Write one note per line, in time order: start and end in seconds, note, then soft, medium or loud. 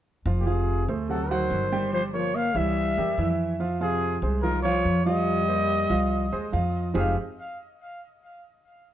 0.26 0.84 F1 loud
0.26 0.43 F3 medium
0.26 0.43 F4 medium
0.26 0.43 F5 medium
0.39 0.48 A#2 soft
0.39 0.48 G4 medium
0.46 0.88 C3 medium
0.46 0.80 F3 medium
0.46 0.80 F4 medium
0.46 0.88 G#4 medium
0.46 0.81 F5 medium
0.88 1.47 D2 medium
0.88 1.05 A3 medium
0.88 1.06 A4 medium
0.88 1.06 C5 medium
1.08 1.31 C3 medium
1.08 1.26 F#3 medium
1.08 1.27 F#4 medium
1.08 1.32 A4 medium
1.08 1.27 F#5 medium
1.30 1.92 D#3 medium
1.30 1.65 F#3 medium
1.30 1.65 F#4 medium
1.30 1.93 C5 medium
1.30 1.65 F#5 medium
1.50 2.49 G1 medium
1.72 2.06 G3 medium
1.72 2.06 G4 medium
1.72 2.06 G5 medium
1.92 2.02 F3 medium
1.92 2.03 C5 medium
2.14 2.36 F3 medium
2.14 2.48 A#3 medium
2.14 2.48 A#4 medium
2.14 2.37 C#5 medium
2.14 2.48 C#5 medium
2.35 2.57 A#3 medium
2.35 2.58 F5 loud
2.55 2.94 C2 medium
2.55 2.90 E3 medium
2.55 3.39 G3 medium
2.55 2.90 E4 medium
2.55 2.90 E5 medium
2.55 3.39 E5 loud
2.97 3.17 E2 medium
2.97 3.15 G3 medium
2.97 3.15 G4 medium
2.97 3.15 A#4 medium
3.18 4.16 F2 medium
3.18 3.53 E3 medium
3.18 3.53 E4 medium
3.18 3.53 E5 medium
3.60 3.77 F3 medium
3.60 3.77 F4 medium
3.60 3.77 F5 medium
3.81 4.20 C3 medium
3.81 4.15 F3 medium
3.81 4.15 F4 medium
3.81 4.20 G#4 medium
3.81 4.15 F5 medium
4.22 4.81 C2 medium
4.22 4.40 G#3 medium
4.22 4.40 G#4 medium
4.22 4.40 C5 medium
4.42 4.62 D#3 medium
4.42 4.60 F3 medium
4.42 4.61 F4 medium
4.42 4.62 A#4 medium
4.42 4.61 F5 medium
4.62 5.02 F3 medium
4.62 4.99 F3 medium
4.62 4.99 F4 medium
4.62 5.02 C#5 medium
4.62 5.00 F5 medium
4.85 5.84 F2 medium
5.04 5.41 F3 medium
5.04 6.48 G3 loud
5.04 5.41 F4 medium
5.04 6.49 D#5 loud
5.04 5.41 F5 medium
5.49 5.83 A#3 medium
5.49 5.83 G4 medium
5.49 5.83 C5 medium
5.90 6.29 C2 medium
5.90 6.24 F3 medium
5.90 6.24 F4 medium
5.90 6.25 F5 medium
6.32 6.52 D#2 medium
6.32 6.49 G#3 medium
6.32 6.50 G#4 medium
6.32 6.50 C5 medium
6.52 6.90 F2 medium
6.52 6.87 F3 medium
6.52 6.87 F4 medium
6.52 6.88 F5 medium
6.94 7.14 F1 medium
6.94 7.15 G#2 medium
6.94 7.14 F3 medium
6.94 7.14 C4 medium
6.94 7.14 D#4 medium
6.94 7.14 F4 medium
6.94 7.14 G4 medium
6.94 7.15 G#4 medium
6.94 7.15 F5 medium